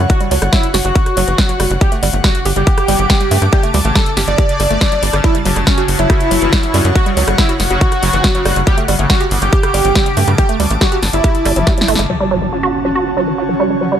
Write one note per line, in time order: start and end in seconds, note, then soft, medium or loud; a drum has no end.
0.00 12.09 C#3 medium
0.00 1.81 F#4 medium
0.00 1.81 C#5 medium
0.00 3.18 F#5 medium
0.10 0.16 F#3 medium
0.10 0.20 F#4 loud
0.10 kick loud
0.10 closed hi-hat medium
0.21 0.29 G3 loud
0.21 closed hi-hat medium
0.31 0.39 C#2 medium
0.31 0.37 F#3 loud
0.31 open hi-hat loud
0.42 0.49 G1 medium
0.42 0.51 G3 medium
0.42 cross-stick medium
0.42 closed hi-hat medium
0.53 0.67 E4 loud
0.53 0.61 F#4 medium
0.53 kick loud
0.53 snare loud
0.53 closed hi-hat medium
0.63 closed hi-hat medium
0.74 0.81 F#1 medium
0.74 0.80 F#4 loud
0.74 snare medium
0.74 open hi-hat loud
0.85 0.92 F#1 medium
0.85 0.91 F#3 medium
0.85 1.73 F#4 loud
0.85 closed hi-hat medium
0.95 1.04 F#4 loud
0.95 kick loud
0.95 closed hi-hat medium
1.06 cross-stick soft
1.06 closed hi-hat medium
1.17 1.24 F#1 loud
1.17 1.23 F#3 loud
1.17 open hi-hat loud
1.28 1.35 F#1 medium
1.28 1.36 E3 medium
1.28 closed hi-hat medium
1.38 1.47 F#4 medium
1.38 kick loud
1.38 snare loud
1.38 closed hi-hat medium
1.49 1.53 F#3 medium
1.49 closed hi-hat medium
1.60 1.67 F#1 medium
1.60 1.68 G3 loud
1.60 cross-stick medium
1.60 open hi-hat loud
1.70 1.78 F#1 medium
1.70 1.76 G3 medium
1.70 closed hi-hat medium
1.81 1.87 G3 medium
1.81 1.91 G4 loud
1.81 kick loud
1.81 closed hi-hat medium
1.92 2.01 A3 loud
1.92 closed hi-hat medium
2.03 2.10 G1 medium
2.03 2.08 G3 loud
2.03 open hi-hat loud
2.13 2.21 G1 medium
2.13 2.22 A3 medium
2.13 closed hi-hat medium
2.24 2.39 F#4 medium
2.24 2.33 G4 medium
2.24 5.24 D6 medium
2.24 kick loud
2.24 cross-stick soft
2.24 snare loud
2.24 closed hi-hat medium
2.35 closed hi-hat medium
2.45 2.53 G1 loud
2.45 2.51 G4 loud
2.45 open hi-hat loud
2.56 2.64 G1 medium
2.56 2.62 G3 medium
2.56 3.44 G4 loud
2.56 closed hi-hat medium
2.67 2.76 G4 loud
2.67 kick loud
2.67 closed hi-hat medium
2.78 cross-stick medium
2.78 closed hi-hat medium
2.88 2.96 G1 loud
2.88 2.94 G3 loud
2.88 open hi-hat loud
2.99 3.06 G1 medium
2.99 3.08 F#3 medium
2.99 closed hi-hat medium
3.10 3.18 G4 medium
3.10 kick loud
3.10 snare loud
3.10 closed hi-hat medium
3.21 3.24 G3 medium
3.21 6.61 A5 medium
3.21 closed hi-hat medium
3.31 3.39 G2 loud
3.31 3.40 A3 loud
3.31 open hi-hat loud
3.42 3.49 G2 medium
3.42 3.48 A3 medium
3.42 cross-stick soft
3.42 closed hi-hat medium
3.53 3.58 G3 medium
3.53 3.62 G4 loud
3.53 kick loud
3.53 closed hi-hat medium
3.63 3.72 A3 loud
3.63 closed hi-hat medium
3.74 3.81 D2 medium
3.74 3.80 G3 loud
3.74 open hi-hat loud
3.85 3.92 A1 medium
3.85 3.93 A3 medium
3.85 closed hi-hat medium
3.95 4.04 G4 medium
3.95 4.10 A4 loud
3.95 kick loud
3.95 cross-stick medium
3.95 snare loud
3.95 closed hi-hat medium
4.06 closed hi-hat medium
4.17 4.24 G1 medium
4.17 4.23 G4 loud
4.17 snare medium
4.17 open hi-hat loud
4.28 4.35 G1 medium
4.28 4.33 G3 medium
4.28 5.16 D5 loud
4.28 closed hi-hat medium
4.38 4.47 G4 loud
4.38 kick loud
4.38 closed hi-hat medium
4.49 closed hi-hat medium
4.60 4.67 G1 loud
4.60 4.63 G3 medium
4.60 cross-stick soft
4.60 open hi-hat loud
4.70 4.78 G1 medium
4.70 4.79 A3 loud
4.70 closed hi-hat medium
4.81 4.85 G3 medium
4.81 kick loud
4.81 snare loud
4.81 closed hi-hat medium
4.92 4.98 F#3 medium
4.92 closed hi-hat medium
5.03 5.10 G1 loud
5.03 5.08 G3 loud
5.03 open hi-hat loud
5.13 5.21 G1 medium
5.13 5.19 G3 medium
5.13 cross-stick medium
5.13 closed hi-hat medium
5.24 5.30 F#3 medium
5.24 5.34 E4 loud
5.24 8.67 F#4 medium
5.24 kick loud
5.24 closed hi-hat medium
5.35 5.43 G3 loud
5.35 closed hi-hat medium
5.45 5.53 F#1 medium
5.45 5.51 F#3 loud
5.45 open hi-hat loud
5.56 5.64 F#1 medium
5.56 5.65 G3 medium
5.56 cross-stick soft
5.56 closed hi-hat medium
5.67 5.82 C#4 medium
5.67 5.76 F#4 medium
5.67 kick loud
5.67 snare loud
5.67 closed hi-hat medium
5.71 8.67 C#5 medium
5.78 5.83 F#4 loud
5.78 closed hi-hat medium
5.88 5.96 F#1 loud
5.88 open hi-hat loud
5.99 6.06 F#1 medium
5.99 6.05 F#3 medium
5.99 6.87 E4 loud
5.99 closed hi-hat medium
6.10 6.18 F#4 loud
6.10 kick loud
6.10 cross-stick medium
6.10 closed hi-hat medium
6.21 closed hi-hat medium
6.31 6.39 F#1 loud
6.31 6.37 F#3 loud
6.31 open hi-hat loud
6.42 6.49 F#1 medium
6.42 6.50 E3 medium
6.42 closed hi-hat medium
6.53 6.61 F#4 medium
6.53 kick loud
6.53 snare loud
6.53 closed hi-hat medium
6.63 6.67 F#3 medium
6.63 closed hi-hat medium
6.68 9.90 F#5 medium
6.74 6.81 F#2 loud
6.74 6.83 G3 loud
6.74 cross-stick soft
6.74 open hi-hat loud
6.85 6.92 F#2 medium
6.85 6.90 G3 medium
6.85 closed hi-hat medium
6.95 7.01 F#3 medium
6.95 7.05 F#4 loud
6.95 kick loud
6.95 closed hi-hat medium
7.06 7.15 G3 loud
7.06 closed hi-hat medium
7.17 7.24 C#2 medium
7.17 7.23 F#3 loud
7.17 open hi-hat loud
7.28 7.35 G1 medium
7.28 7.36 G3 medium
7.28 cross-stick medium
7.28 closed hi-hat medium
7.38 7.53 E4 medium
7.38 7.47 F#4 medium
7.38 kick loud
7.38 snare loud
7.38 closed hi-hat medium
7.49 7.55 F#4 loud
7.49 closed hi-hat medium
7.60 7.67 F#1 loud
7.60 snare medium
7.60 open hi-hat loud
7.70 7.78 F#1 medium
7.70 7.76 F#3 medium
7.70 8.58 F#4 loud
7.70 closed hi-hat medium
7.81 7.90 F#4 loud
7.81 kick loud
7.81 closed hi-hat medium
7.92 cross-stick soft
7.92 closed hi-hat medium
8.03 8.10 F#1 loud
8.03 8.08 F#3 loud
8.03 open hi-hat loud
8.13 8.21 F#1 medium
8.13 8.22 E3 medium
8.13 closed hi-hat medium
8.24 8.33 F#4 medium
8.24 kick loud
8.24 snare loud
8.24 closed hi-hat medium
8.35 8.38 F#3 medium
8.35 closed hi-hat medium
8.45 8.53 F#1 loud
8.45 8.54 G3 loud
8.45 cross-stick medium
8.45 open hi-hat loud
8.56 8.64 F#1 medium
8.56 8.62 G3 medium
8.56 closed hi-hat medium
8.67 8.73 G3 medium
8.67 8.77 G4 loud
8.67 kick loud
8.67 closed hi-hat medium
8.78 8.86 A3 loud
8.78 closed hi-hat medium
8.88 8.96 G1 medium
8.88 8.94 G3 loud
8.88 12.10 D6 medium
8.88 open hi-hat loud
8.99 9.06 G1 medium
8.99 9.08 A3 medium
8.99 closed hi-hat medium
9.10 9.25 F#4 loud
9.10 9.18 G4 medium
9.10 kick loud
9.10 cross-stick soft
9.10 snare loud
9.10 closed hi-hat medium
9.20 9.26 G4 loud
9.20 closed hi-hat medium
9.31 9.39 G1 loud
9.31 open hi-hat loud
9.42 9.49 G1 medium
9.42 9.48 G3 medium
9.42 10.30 G4 loud
9.42 closed hi-hat medium
9.53 9.61 G4 loud
9.53 kick loud
9.53 closed hi-hat medium
9.63 cross-stick medium
9.63 closed hi-hat medium
9.74 9.81 G1 loud
9.74 9.80 G3 loud
9.74 open hi-hat loud
9.85 9.92 G1 medium
9.85 9.93 F#3 medium
9.85 closed hi-hat medium
9.95 10.04 G4 medium
9.95 kick loud
9.95 snare loud
9.95 closed hi-hat medium
10.00 13.47 A5 medium
10.06 10.10 G3 medium
10.06 closed hi-hat medium
10.17 10.24 G2 medium
10.17 10.26 A3 loud
10.17 open hi-hat loud
10.28 10.35 G2 medium
10.28 10.33 A3 medium
10.28 cross-stick soft
10.28 closed hi-hat medium
10.38 10.44 G3 medium
10.38 10.48 G4 loud
10.38 kick loud
10.38 closed hi-hat medium
10.49 10.58 A3 loud
10.49 closed hi-hat medium
10.60 10.67 D2 medium
10.60 10.65 G3 loud
10.60 open hi-hat loud
10.70 10.78 A1 medium
10.70 10.79 A3 medium
10.70 closed hi-hat medium
10.81 10.96 F#4 medium
10.81 10.90 G4 medium
10.81 kick loud
10.81 cross-stick medium
10.81 snare loud
10.81 closed hi-hat medium
10.92 10.98 G4 loud
10.92 closed hi-hat medium
11.03 11.10 G1 loud
11.03 snare medium
11.03 open hi-hat loud
11.13 11.21 G1 medium
11.13 11.19 G3 medium
11.13 12.01 E4 loud
11.13 closed hi-hat medium
11.24 11.33 G4 loud
11.24 kick loud
11.24 closed hi-hat medium
11.35 closed hi-hat medium
11.45 11.53 G1 medium
11.45 11.51 G3 loud
11.45 cross-stick soft
11.45 open hi-hat loud
11.56 11.64 G1 medium
11.56 11.65 F#3 medium
11.56 closed hi-hat medium
11.67 11.76 G4 medium
11.67 kick loud
11.67 snare medium
11.67 closed hi-hat medium
11.78 11.81 G3 medium
11.78 snare medium
11.78 closed hi-hat medium
11.88 11.96 G1 medium
11.88 11.97 A3 loud
11.88 open hi-hat loud
11.95 12.06 G1 medium
11.95 12.05 A3 medium
11.95 snare loud
11.95 closed hi-hat medium
12.10 14.00 C#3 medium
12.10 12.16 F#3 medium
12.10 14.00 C#4 medium
12.10 14.00 F#4 medium
12.10 impact medium
12.20 12.29 G3 loud
12.31 12.37 F#3 loud
12.42 12.50 G3 medium
12.53 12.61 F#4 medium
12.63 12.69 F#4 loud
12.85 12.90 F#3 medium
12.85 14.00 C#5 medium
12.95 13.04 F#4 loud
13.17 13.23 F#3 loud
13.28 13.36 E3 medium
13.38 13.47 F#4 medium
13.49 13.52 F#3 medium
13.49 14.00 F#5 medium
13.60 13.68 G3 loud
13.70 13.76 G3 medium
13.81 13.87 F#3 medium
13.92 14.00 G3 loud